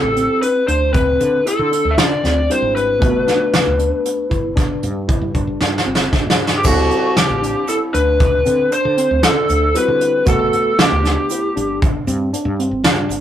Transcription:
Already playing: G3 C4 E4 A4
0.03 A1
0.16 C4, closed hi-hat
0.42 B4, closed hi-hat
0.67 D2 D4 C5, closed hi-hat
0.93 C4 B4, kick, closed hi-hat
1.20 D3, closed hi-hat
1.45 E4 A4, closed hi-hat
1.59 D3
1.71 D4, closed hi-hat
1.85 D2
1.91 E5
1.98 D3 D5, snare, closed hi-hat
2.24 D2 C4, snare, closed hi-hat
2.49 G3 C4 D4 E4 C5, closed hi-hat
2.62 G#1
2.76 B4, closed hi-hat
2.99 G1 A3 B3 F#4, kick, closed hi-hat
3.27 D4, snare, closed hi-hat
3.54 snare, closed hi-hat
3.66 D2
3.79 D4, closed hi-hat
4.05 closed hi-hat
4.30 G1 E4, kick, closed hi-hat
4.56 D4, kick, snare, closed hi-hat
4.83 G2, closed hi-hat
5.08 E4, kick, closed hi-hat
5.21 G2
5.34 D4, kick, closed hi-hat
5.47 G1
5.61 G2, snare
5.78 snare
5.86 G1 C4
5.95 snare
6.13 D4, kick, snare
6.26 G2, snare
6.47 snare
6.58 G4
6.63 D2 G3 C4 E4 F#4 A4, kick, crash, shaker
6.91 closed hi-hat
7.17 G4, snare, closed hi-hat
7.30 A1
7.42 D4, closed hi-hat
7.68 E4 A4, closed hi-hat, shaker
7.93 D2 D4 B4, closed hi-hat
8.20 kick, closed hi-hat
8.46 D3 C4, closed hi-hat, shaker
8.71 D4 C5, closed hi-hat
8.85 D3
8.97 C4, closed hi-hat
9.11 D2
9.23 D3 D4 A4, snare, closed hi-hat
9.49 D2, closed hi-hat, shaker
9.74 G3 C4 E4 F#4 B4, closed hi-hat
9.88 D3
10.01 closed hi-hat
10.26 G1 A3 B3 F#4 A4 F#5, kick, closed hi-hat, shaker
10.53 closed hi-hat
10.79 G4, snare, closed hi-hat
10.92 D2
11.04 D4, snare, closed hi-hat
11.30 E4, closed hi-hat, shaker
11.56 G1 D4, closed hi-hat
11.82 kick, closed hi-hat
12.07 G2 C4, closed hi-hat, shaker
12.33 D4, closed hi-hat
12.45 G2
12.59 C4, closed hi-hat
12.71 G1
12.84 G2 D4, snare, closed hi-hat
13.09 G1, closed hi-hat, shaker

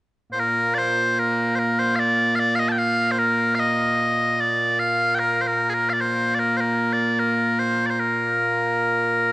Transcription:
0.32 A#2 A#3 C5
0.39 A#4
0.75 C5 D5
1.19 A#4
1.55 A#4 C5
1.79 C5
1.96 D5 F5
2.35 F5
2.39 D5
2.55 D#5 F5
2.69 G5 A5
2.78 F5
3.11 C5
3.19 A#4
3.55 F5
3.59 D#5
4.40 D5
4.79 F5
5.15 G5
5.19 A#4
5.41 C5
5.47 A#4
5.70 G#4
5.74 A#4
5.90 D5 F5
6.01 C5
6.35 D5
6.39 A#4
6.57 A#4 C5
6.93 D5
7.20 A#4
7.59 C5
7.86 C5 D5
7.99 A#4

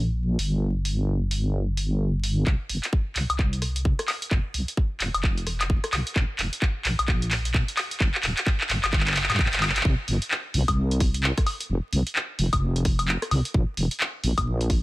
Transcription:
Already playing: A#1
0.39 G1, open hi-hat
0.85 open hi-hat
1.31 open hi-hat
1.77 open hi-hat
2.23 open hi-hat
2.47 C2, kick, clap
2.69 G1, open hi-hat
2.84 clap, closed hi-hat
2.93 kick
3.16 C2, clap, open hi-hat
3.30 C2, closed hi-hat, high woodblock
3.39 kick, clap
3.53 closed hi-hat
3.62 cross-stick, open hi-hat
3.76 closed hi-hat
3.85 kick
3.99 cross-stick, closed hi-hat
4.08 clap, open hi-hat, high woodblock
4.22 closed hi-hat
4.31 F1, kick, clap
4.54 C2, open hi-hat
4.68 closed hi-hat
4.77 kick
5.00 F1, clap, open hi-hat
5.14 F1, closed hi-hat, high woodblock
5.23 kick, clap
5.38 closed hi-hat
5.47 cross-stick, open hi-hat
5.61 clap, closed hi-hat, high woodblock
5.70 kick
5.84 cross-stick, closed hi-hat
5.93 C2, clap, open hi-hat, high woodblock
6.07 closed hi-hat
6.16 A#1, kick, clap
6.39 F1, clap, open hi-hat
6.53 closed hi-hat
6.62 kick, clap
6.85 A#1, clap, open hi-hat
6.99 A#1, closed hi-hat, high woodblock
7.08 kick, clap
7.22 closed hi-hat
7.31 clap, open hi-hat
7.45 closed hi-hat
7.54 kick, clap
7.68 closed hi-hat
7.77 clap, open hi-hat, high woodblock
7.91 closed hi-hat
8.00 G1, kick, clap
8.14 clap
8.23 D1, clap, open hi-hat
8.37 clap, closed hi-hat
8.47 kick, clap
8.61 clap
8.70 G1, clap, open hi-hat
8.84 G1, clap, closed hi-hat, high woodblock
8.93 kick, clap
9.00 clap
9.07 clap, closed hi-hat
9.11 clap
9.16 clap, open hi-hat
9.23 clap
9.30 G2, clap, closed hi-hat, high woodblock
9.34 clap
9.39 kick, clap
9.46 clap
9.53 G1, clap, closed hi-hat
9.57 clap
9.62 clap, open hi-hat, high woodblock
9.69 clap
9.76 clap, closed hi-hat
9.80 clap
9.85 C2, kick
10.08 G1, open hi-hat
10.22 closed hi-hat
10.31 clap
10.54 C2, open hi-hat
10.68 C2, kick, closed hi-hat, high woodblock
10.91 closed hi-hat
11.00 kick, cross-stick, open hi-hat
11.14 closed hi-hat
11.23 clap
11.37 kick, cross-stick, closed hi-hat
11.46 open hi-hat, high woodblock
11.60 closed hi-hat
11.70 F1
11.93 C2, open hi-hat
12.07 closed hi-hat
12.16 clap
12.39 F1, open hi-hat
12.53 F1, kick, closed hi-hat, high woodblock
12.76 closed hi-hat
12.85 kick, cross-stick, open hi-hat
12.99 closed hi-hat, high woodblock
13.08 clap
13.22 cross-stick, closed hi-hat
13.31 C2, open hi-hat, high woodblock
13.45 closed hi-hat
13.54 A#1, kick
13.77 F1, open hi-hat
13.91 closed hi-hat
14.00 clap
14.24 A#1, open hi-hat
14.38 A#1, kick, closed hi-hat, high woodblock
14.61 closed hi-hat
14.70 kick, cross-stick, open hi-hat

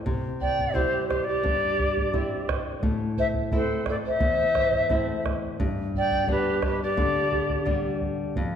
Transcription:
0.06 C3, bombo low
0.41 D5 G5, bombo low
0.59 bombo low
0.74 G3 C4 E4 G4 C5, bombo low
1.07 G4 C5, bombo rim, bombo low
1.24 G4 D5
1.43 G2, bombo low
1.79 bombo low
1.97 bombo low
2.13 G3 C4 E4, bombo low
2.49 bombo rim, bombo low
2.83 A2, bombo low
3.17 C5 E5, bombo low
3.34 bombo low
3.52 A3 C4 E4 A4 C5, bombo low
3.86 A4, bombo rim, bombo low
3.90 D5
4.05 C5 E5
4.20 E2, bombo low
4.55 bombo rim, bombo low
4.73 bombo low
4.89 A3 C4 E4, bombo low
5.26 bombo rim, bombo low
5.60 G2, bombo low
5.94 D5 G5, bombo low
6.11 bombo low
6.27 G3 B3 D4 G4 B4, bombo low
6.62 G4 B4, bombo rim, bombo low
6.82 G4 D5
6.97 D3, bombo low
7.32 bombo low
7.49 bombo low
7.66 G3 B3 D4, bombo low
8.01 bombo low
8.36 F2, bombo low

